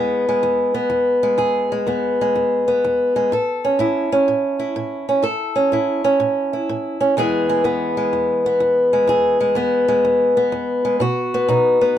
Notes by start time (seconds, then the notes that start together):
Already playing: E2 G#3 B3 G#4
0.29 G#3
0.43 E2
0.74 B3
0.90 E2
1.23 G#3
1.38 E2 G#4
1.72 G#3
1.87 E2 B3
2.21 G#3
2.35 E2
2.68 B3
2.84 E2
3.16 G#3
3.32 A2 A4
3.65 C#4
3.79 A2 E4
4.12 C#4
4.28 A2
4.59 E4
4.76 A2
5.09 C#4
5.22 A2 A4
5.56 C#4
5.72 A2 E4
6.04 C#4
6.20 A2
6.53 E4
6.69 A2
7.01 C#4
7.17 E2 E3 G#3 B3 G#4
7.49 G#3
7.64 E2 B3
7.97 G#3
8.13 E2
8.46 B3
8.60 E2
8.93 G#3
9.07 E2 G#4
9.40 G#3
9.55 E2 B3
9.88 G#3
10.05 E2
10.37 B3
10.52 E2
10.85 G#3
11.00 B2 F#4
11.34 B3
11.48 B2 D#4
11.81 B3